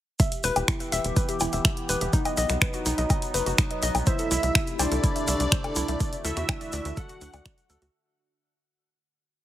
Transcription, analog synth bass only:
0, 0, Header, 1, 2, 480
1, 0, Start_track
1, 0, Key_signature, 1, "minor"
1, 0, Tempo, 483871
1, 195, Time_signature, 4, 2, 24, 8
1, 9368, End_track
2, 0, Start_track
2, 0, Title_t, "Analog synth bass"
2, 0, Program_c, 0, 38
2, 435, Note_on_c, 0, 28, 96
2, 510, Note_off_c, 0, 28, 0
2, 557, Note_on_c, 0, 28, 83
2, 630, Note_off_c, 0, 28, 0
2, 916, Note_on_c, 0, 28, 100
2, 991, Note_off_c, 0, 28, 0
2, 1036, Note_on_c, 0, 28, 84
2, 1110, Note_off_c, 0, 28, 0
2, 1396, Note_on_c, 0, 28, 94
2, 1471, Note_off_c, 0, 28, 0
2, 1517, Note_on_c, 0, 28, 83
2, 1591, Note_off_c, 0, 28, 0
2, 1876, Note_on_c, 0, 28, 99
2, 1951, Note_off_c, 0, 28, 0
2, 1997, Note_on_c, 0, 28, 78
2, 2071, Note_off_c, 0, 28, 0
2, 2356, Note_on_c, 0, 35, 97
2, 2431, Note_off_c, 0, 35, 0
2, 2477, Note_on_c, 0, 36, 81
2, 2551, Note_off_c, 0, 36, 0
2, 2836, Note_on_c, 0, 35, 101
2, 2911, Note_off_c, 0, 35, 0
2, 2957, Note_on_c, 0, 35, 86
2, 3031, Note_off_c, 0, 35, 0
2, 3315, Note_on_c, 0, 30, 97
2, 3390, Note_off_c, 0, 30, 0
2, 3437, Note_on_c, 0, 30, 87
2, 3510, Note_off_c, 0, 30, 0
2, 3795, Note_on_c, 0, 35, 100
2, 3871, Note_off_c, 0, 35, 0
2, 3917, Note_on_c, 0, 35, 83
2, 3990, Note_off_c, 0, 35, 0
2, 4275, Note_on_c, 0, 36, 96
2, 4351, Note_off_c, 0, 36, 0
2, 4397, Note_on_c, 0, 36, 80
2, 4470, Note_off_c, 0, 36, 0
2, 4756, Note_on_c, 0, 36, 98
2, 4831, Note_off_c, 0, 36, 0
2, 4876, Note_on_c, 0, 36, 84
2, 4950, Note_off_c, 0, 36, 0
2, 5236, Note_on_c, 0, 36, 94
2, 5311, Note_off_c, 0, 36, 0
2, 5357, Note_on_c, 0, 36, 83
2, 5430, Note_off_c, 0, 36, 0
2, 5715, Note_on_c, 0, 36, 97
2, 5791, Note_off_c, 0, 36, 0
2, 5837, Note_on_c, 0, 36, 82
2, 5910, Note_off_c, 0, 36, 0
2, 6196, Note_on_c, 0, 38, 96
2, 6271, Note_off_c, 0, 38, 0
2, 6317, Note_on_c, 0, 40, 77
2, 6391, Note_off_c, 0, 40, 0
2, 6676, Note_on_c, 0, 38, 102
2, 6751, Note_off_c, 0, 38, 0
2, 6796, Note_on_c, 0, 38, 87
2, 6870, Note_off_c, 0, 38, 0
2, 7155, Note_on_c, 0, 38, 96
2, 7231, Note_off_c, 0, 38, 0
2, 7276, Note_on_c, 0, 38, 83
2, 7350, Note_off_c, 0, 38, 0
2, 7636, Note_on_c, 0, 38, 102
2, 7711, Note_off_c, 0, 38, 0
2, 7756, Note_on_c, 0, 38, 82
2, 7830, Note_off_c, 0, 38, 0
2, 9368, End_track
0, 0, End_of_file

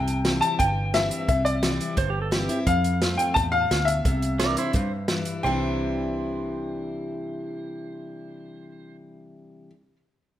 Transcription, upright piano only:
0, 0, Header, 1, 2, 480
1, 0, Start_track
1, 0, Key_signature, 0, "major"
1, 0, Tempo, 345423
1, 1788, Time_signature, 4, 2, 24, 8
1, 14450, End_track
2, 0, Start_track
2, 0, Title_t, "Upright piano"
2, 0, Program_c, 0, 0
2, 0, Note_on_c, 0, 79, 91
2, 567, Note_on_c, 0, 81, 92
2, 588, Note_off_c, 0, 79, 0
2, 817, Note_on_c, 0, 79, 94
2, 825, Note_off_c, 0, 81, 0
2, 1306, Note_on_c, 0, 76, 84
2, 1318, Note_off_c, 0, 79, 0
2, 1766, Note_off_c, 0, 76, 0
2, 1787, Note_on_c, 0, 76, 83
2, 2011, Note_off_c, 0, 76, 0
2, 2013, Note_on_c, 0, 74, 77
2, 2690, Note_off_c, 0, 74, 0
2, 3706, Note_on_c, 0, 77, 86
2, 4411, Note_on_c, 0, 79, 81
2, 4450, Note_off_c, 0, 77, 0
2, 4643, Note_off_c, 0, 79, 0
2, 4643, Note_on_c, 0, 81, 99
2, 4713, Note_off_c, 0, 81, 0
2, 4888, Note_on_c, 0, 77, 107
2, 5352, Note_on_c, 0, 76, 91
2, 5394, Note_off_c, 0, 77, 0
2, 6996, Note_off_c, 0, 76, 0
2, 7548, Note_on_c, 0, 79, 72
2, 13419, Note_off_c, 0, 79, 0
2, 14450, End_track
0, 0, End_of_file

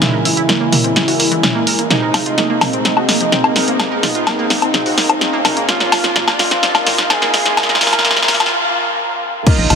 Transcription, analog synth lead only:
0, 0, Header, 1, 2, 480
1, 0, Start_track
1, 0, Tempo, 472441
1, 17, Time_signature, 4, 2, 24, 8
1, 9910, End_track
2, 0, Start_track
2, 0, Title_t, "Analog synth lead"
2, 0, Program_c, 0, 81
2, 0, Note_on_c, 0, 63, 99
2, 160, Note_off_c, 0, 63, 0
2, 256, Note_on_c, 0, 64, 106
2, 1841, Note_off_c, 0, 64, 0
2, 1937, Note_on_c, 0, 63, 102
2, 2657, Note_on_c, 0, 60, 104
2, 2672, Note_off_c, 0, 63, 0
2, 3281, Note_off_c, 0, 60, 0
2, 3376, Note_on_c, 0, 60, 101
2, 4001, Note_off_c, 0, 60, 0
2, 4097, Note_on_c, 0, 63, 106
2, 5681, Note_off_c, 0, 63, 0
2, 5777, Note_on_c, 0, 65, 113
2, 6401, Note_off_c, 0, 65, 0
2, 6499, Note_on_c, 0, 65, 103
2, 7122, Note_off_c, 0, 65, 0
2, 7218, Note_on_c, 0, 68, 107
2, 7842, Note_off_c, 0, 68, 0
2, 7938, Note_on_c, 0, 70, 100
2, 8657, Note_off_c, 0, 70, 0
2, 9616, Note_on_c, 0, 63, 110
2, 9910, Note_off_c, 0, 63, 0
2, 9910, End_track
0, 0, End_of_file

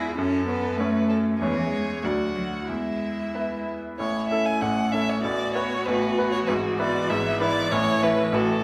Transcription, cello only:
0, 0, Header, 1, 2, 480
1, 0, Start_track
1, 0, Key_signature, 3, "major"
1, 0, Tempo, 620476
1, 136, Time_signature, 2, 2, 24, 8
1, 1579, Tempo, 644468
1, 3499, Tempo, 617284
1, 6623, End_track
2, 0, Start_track
2, 0, Title_t, "Cello"
2, 0, Program_c, 0, 42
2, 0, Note_on_c, 0, 64, 65
2, 134, Note_off_c, 0, 64, 0
2, 139, Note_on_c, 0, 61, 75
2, 364, Note_off_c, 0, 61, 0
2, 368, Note_on_c, 0, 59, 72
2, 598, Note_on_c, 0, 57, 70
2, 610, Note_off_c, 0, 59, 0
2, 1084, Note_off_c, 0, 57, 0
2, 1088, Note_on_c, 0, 52, 74
2, 1317, Note_off_c, 0, 52, 0
2, 1322, Note_on_c, 0, 56, 65
2, 1384, Note_off_c, 0, 56, 0
2, 1566, Note_on_c, 0, 57, 65
2, 1626, Note_off_c, 0, 57, 0
2, 1812, Note_on_c, 0, 54, 57
2, 1872, Note_off_c, 0, 54, 0
2, 2056, Note_on_c, 0, 56, 57
2, 2774, Note_off_c, 0, 56, 0
2, 3034, Note_on_c, 0, 57, 46
2, 3950, Note_off_c, 0, 57, 0
2, 3974, Note_on_c, 0, 59, 56
2, 4925, Note_off_c, 0, 59, 0
2, 4950, Note_on_c, 0, 52, 63
2, 6623, Note_off_c, 0, 52, 0
2, 6623, End_track
0, 0, End_of_file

